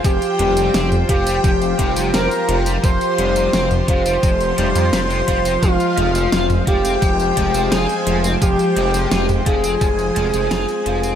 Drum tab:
HH |xxxxxxxxxxxxxxxx|xxxxxxxxxxxxxxxx|xxxxxxxxxxxxxxxx|xxxxxxxxxxxxxxxx|
TB |xx-xxx-xxx-xxx-x|xx-xxx-xxx-xxx-x|xx-xxx-xxx-xxx-x|xx-xxx-xxx-xxx-x|
SD |----o-------o---|----o-------o---|----o-------o---|----o-------o---|
T2 |--o--o----------|-----o----o-----|--o--o----------|-----o----o-----|
BD |o-----o-o-o-----|o-----o-o-----o-|o-----o-o-o-----|o-----o-o-------|